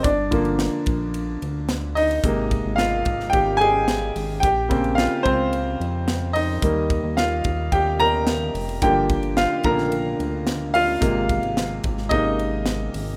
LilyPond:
<<
  \new Staff \with { instrumentName = "Upright piano" } { \time 4/4 \key g \phrygian \tempo 4 = 109 <d' d''>2. r8 <ees' ees''>8~ | <ees' ees''>4 <f' f''>4 <g' g''>8 <aes' aes''>4. | <g' g''>4 <f' f''>8 <c' c''>4. r8 <ees' ees''>8~ | <ees' ees''>4 <f' f''>4 <g' g''>8 <bes' bes''>4. |
<g' g''>4 <f' f''>8 <bes' bes''>4. r8 <f' f''>8~ | <f' f''>4. r8 <ees' ees''>4. r8 | }
  \new Staff \with { instrumentName = "Upright piano" } { \clef bass \time 4/4 \key g \phrygian r8 <d f bes>8 r2. | <c aes bes>8 r2. r8 | r8 <des bes c'>8 r2. | <ees g bes>8 r2. r8 |
<d f bes>4. <d f bes>8 r2 | <c aes bes>4. r8 <c aes bes>8 r4. | }
  \new Staff \with { instrumentName = "Analog synth bass" } { \clef bass \time 4/4 \key g \phrygian g,,4~ g,,16 r16 bes,,4 d,4. | aes,,8. aes,,8. aes,,8 aes,,4. aes,,8 | bes,,4~ bes,,16 r16 des,4 f,4. | ees,8. ees,8. ees,8 ees,4. f,,8 |
g,,4~ g,,16 r16 bes,,4 d,4. | aes,,8. aes,,8. aes,,8 aes,,4. aes,,8 | }
  \new DrumStaff \with { instrumentName = "Drums" } \drummode { \time 4/4 <hhp bd cymr>8 <bd cymr>16 cymr16 <cymr sn>8 <bd cymr>8 cymr8 cymr8 <cymr sn>8 <hho cymr>16 cymr16 | <hhp bd cymr>8 <bd cymr>8 <cymr sn>8 <bd cymr>16 sn16 <bd cymr>8 cymr8 <cymr sn>8 <hho cymr>8 | <hhp bd cymr>8 <bd cymr>16 cymr16 <cymr sn>8 <bd cymr>8 cymr8 cymr8 <cymr sn>8 <hho cymr>8 | <hhp bd cymr>8 <bd cymr>8 <cymr sn>8 <bd cymr>8 <bd cymr>8 cymr8 <cymr sn>8 <hho cymr>16 cymr16 |
<hhp bd cymr>8 <bd cymr>16 cymr16 <cymr sn>8 <bd cymr>16 sn16 cymr8 cymr8 <cymr sn>8 <hho cymr>8 | <hhp bd cymr>8 <bd cymr>16 cymr16 <cymr sn>8 <bd cymr>16 sn16 <bd cymr>8 cymr8 <cymr sn>8 <hho cymr>8 | }
>>